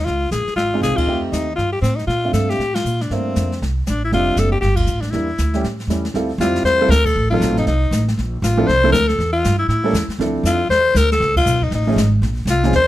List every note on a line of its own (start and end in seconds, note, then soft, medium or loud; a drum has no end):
0.05 0.31 C#2 medium
0.05 0.31 F4 medium
0.05 brush sweep soft
0.05 snare soft
0.31 0.45 A#1 medium
0.31 0.55 G#4 medium
0.31 snare medium
0.31 hi-hat pedal soft
0.46 muted upright bass stroke soft
0.46 snare soft
0.56 0.81 G#1 medium
0.56 0.80 F4 medium
0.56 brush sweep soft
0.56 snare soft
0.73 1.06 G#3 medium
0.73 1.06 C4 medium
0.73 1.06 D#4 medium
0.73 1.07 F4 medium
0.81 0.96 C2 medium
0.81 0.98 G#4 medium
0.81 snare soft
0.81 hi-hat pedal soft
0.96 1.22 F4 medium
0.96 muted upright bass stroke soft
0.96 kick medium
0.96 ride medium
1.06 1.31 F2 medium
1.06 1.45 A3 soft
1.06 1.46 C4 soft
1.06 1.45 D#4 soft
1.06 1.46 G4 medium
1.06 brush sweep soft
1.32 1.57 D#2 medium
1.32 1.55 D#4 medium
1.32 snare soft
1.32 hi-hat pedal medium
1.56 1.81 G2 medium
1.56 1.71 F4 medium
1.56 brush sweep soft
1.56 snare soft
1.72 1.81 G4 medium
1.82 2.07 A2 medium
1.82 1.97 C4 medium
1.82 snare medium
1.82 hi-hat pedal medium
1.96 2.07 D#4 medium
1.96 snare soft
2.07 2.32 A#2 medium
2.07 2.32 F4 medium
2.07 brush sweep soft
2.07 snare soft
2.24 2.58 A3 soft
2.24 2.58 C4 soft
2.24 2.58 D4 soft
2.24 2.58 F4 medium
2.33 2.58 G2 medium
2.33 2.51 A4 medium
2.33 snare soft
2.33 hi-hat pedal medium
2.50 2.76 G4 medium
2.50 snare soft
2.59 2.84 A2 medium
2.59 brush sweep soft
2.59 snare soft
2.75 3.04 F4 medium
2.75 snare medium
2.75 ride medium
2.84 3.09 A#2 medium
2.84 hi-hat pedal soft
3.01 3.14 D4 medium
3.01 snare soft
3.10 3.35 G2 medium
3.10 3.48 A3 soft
3.10 3.48 A#3 soft
3.10 3.61 C4 medium
3.10 3.49 D4 soft
3.10 3.49 F4 soft
3.10 brush sweep soft
3.10 snare soft
3.36 3.60 F2 medium
3.36 snare medium
3.36 hi-hat pedal medium
3.52 snare soft
3.62 3.86 C2 medium
3.62 brush sweep soft
3.62 snare soft
3.87 4.12 A1 medium
3.87 4.02 D4 medium
3.87 snare medium
3.87 hi-hat pedal medium
4.05 4.13 E4 medium
4.12 4.36 F1 medium
4.12 4.50 G3 soft
4.12 4.50 A3 soft
4.12 4.50 C4 medium
4.12 4.50 D4 medium
4.12 4.41 F4 medium
4.12 brush sweep soft
4.12 snare soft
4.36 4.61 F#1 medium
4.36 4.51 A4 medium
4.36 snare medium
4.36 hi-hat pedal soft
4.52 4.60 G4 medium
4.61 4.86 G1 medium
4.61 4.77 G4 medium
4.61 brush sweep soft
4.61 snare soft
4.76 5.03 F4 medium
4.76 kick medium
4.76 ride medium
4.87 5.12 A1 medium
4.87 hi-hat pedal soft
5.01 5.12 D4 medium
5.01 snare soft
5.11 5.38 E2 medium
5.11 5.27 G3 soft
5.11 5.27 A#3 soft
5.11 5.27 D4 soft
5.11 5.63 E4 medium
5.11 5.28 E4 medium
5.11 brush sweep soft
5.11 snare soft
5.38 5.63 D2 medium
5.38 snare medium
5.38 hi-hat pedal medium
5.54 5.63 G3 medium
5.54 5.63 A3 medium
5.54 5.64 C#4 soft
5.54 5.64 G4 medium
5.54 snare soft
5.64 5.87 A2 medium
5.64 brush sweep soft
5.64 snare soft
5.80 snare soft
5.87 6.13 E2 medium
5.87 6.03 G3 soft
5.87 6.03 A3 soft
5.87 6.04 C#4 soft
5.87 6.04 E4 medium
5.87 snare medium
5.87 hi-hat pedal soft
6.05 snare soft
6.14 6.38 D2 medium
6.14 6.28 G3 soft
6.14 6.28 C4 medium
6.14 6.29 E4 medium
6.14 6.29 F4 medium
6.14 6.29 A4 medium
6.14 brush sweep soft
6.14 snare soft
6.38 6.63 F2 medium
6.38 6.78 G3 medium
6.38 6.78 C4 medium
6.38 6.78 E4 medium
6.38 6.64 F4 medium
6.38 6.78 F4 soft
6.38 6.78 C5 medium
6.38 snare medium
6.38 hi-hat pedal medium
6.56 snare soft
6.64 6.88 E2 medium
6.64 6.92 C5 loud
6.64 brush sweep soft
6.64 snare soft
6.81 6.90 G3 medium
6.81 6.90 C4 medium
6.81 6.90 E4 medium
6.81 6.90 F4 medium
6.81 6.90 A4 medium
6.88 7.14 D2 loud
6.88 7.07 A#4 loud
6.88 snare medium
6.88 hi-hat pedal medium
7.05 7.30 A4 medium
7.05 kick loud
7.05 crash medium
7.16 7.40 A1 medium
7.16 brush sweep soft
7.30 7.65 F#3 medium
7.30 7.65 C4 medium
7.30 7.66 D#4 medium
7.30 7.54 F4 medium
7.30 7.66 F4 medium
7.30 7.66 A4 medium
7.40 7.49 A#1 medium
7.40 snare medium
7.40 hi-hat pedal medium
7.49 7.58 A1 medium
7.57 7.66 F1 medium
7.57 7.67 D#4 medium
7.57 snare soft
7.67 7.90 C2 medium
7.67 8.05 D#4 medium
7.67 brush sweep soft
7.67 snare soft
7.91 8.16 A1 medium
7.91 snare medium
7.91 hi-hat pedal medium
8.08 snare soft
8.17 8.42 A#1 medium
8.17 brush sweep soft
8.17 snare soft
8.42 8.67 A1 medium
8.42 8.69 F4 medium
8.42 snare medium
8.42 hi-hat pedal medium
8.57 8.67 F3 medium
8.57 8.67 C4 medium
8.57 8.67 D4 medium
8.57 8.67 E4 medium
8.57 8.67 A4 medium
8.67 8.92 C2 medium
8.67 8.92 C5 loud
8.67 brush sweep soft
8.67 snare soft
8.84 8.93 F3 medium
8.84 8.93 C4 medium
8.84 8.93 D4 medium
8.84 8.93 E4 medium
8.84 8.93 A4 medium
8.92 9.18 D2 loud
8.92 9.10 A#4 loud
8.92 snare medium
8.92 hi-hat pedal medium
9.08 9.32 A4 medium
9.08 snare soft
9.18 9.43 E2 medium
9.18 brush sweep soft
9.18 snare soft
9.33 9.57 F4 medium
9.44 9.68 G2 medium
9.44 snare medium
9.44 hi-hat pedal medium
9.59 9.68 E4 medium
9.68 9.93 A2 medium
9.68 10.07 E4 medium
9.68 brush sweep soft
9.68 snare soft
9.84 9.93 G3 medium
9.84 9.93 A#3 medium
9.84 9.94 C#4 medium
9.84 9.94 E4 medium
9.84 9.94 A4 medium
9.93 10.07 E2 medium
9.93 snare medium
9.93 hi-hat pedal medium
10.08 muted upright bass stroke soft
10.08 snare soft
10.19 10.43 D2 medium
10.19 10.57 F3 medium
10.19 10.57 C4 medium
10.19 10.57 D4 medium
10.19 10.58 E4 medium
10.19 10.58 A4 medium
10.19 brush sweep soft
10.19 snare soft
10.43 10.69 F2 medium
10.43 10.69 F4 medium
10.43 snare medium
10.43 hi-hat pedal medium
10.69 10.94 E2 medium
10.69 10.98 C5 loud
10.69 brush sweep medium
10.69 snare soft
10.95 11.20 D2 loud
10.95 11.12 A#4 loud
10.95 snare medium
10.95 hi-hat pedal medium
11.12 11.35 A4 medium
11.12 snare soft
11.20 11.46 C#2 medium
11.20 brush sweep soft
11.20 snare soft
11.36 11.65 F4 medium
11.36 kick medium
11.36 crash medium
11.46 11.70 B1 loud
11.46 hi-hat pedal medium
11.62 11.73 D#4 medium
11.62 kick medium
11.71 11.96 A1 medium
11.71 12.11 D#4 medium
11.71 brush sweep medium
11.71 snare soft
11.87 11.96 F3 medium
11.87 11.97 A3 medium
11.87 11.97 C#4 medium
11.87 11.97 D#4 medium
11.87 11.97 G#4 medium
11.96 12.21 G#1 medium
11.96 snare medium
11.96 hi-hat pedal medium
12.22 12.45 A#1 medium
12.22 brush sweep medium
12.22 snare soft
12.46 12.71 C2 medium
12.46 snare medium
12.46 hi-hat pedal medium
12.50 12.73 F4 medium
12.64 12.73 F3 medium
12.64 12.73 C4 medium
12.64 12.73 C#4 medium
12.64 12.73 D#4 medium
12.64 12.74 G#4 medium
12.64 snare soft
12.73 12.87 D#2 medium
12.73 12.87 C5 loud
12.73 brush sweep medium
12.73 snare soft